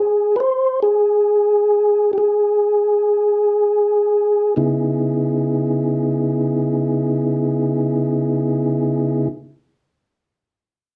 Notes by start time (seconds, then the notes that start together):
Already playing: G#4
0.36 B4
0.40 C5
0.83 G#4
2.13 G4
2.18 G#4
4.56 C#3 B3 D#4 E4 G#4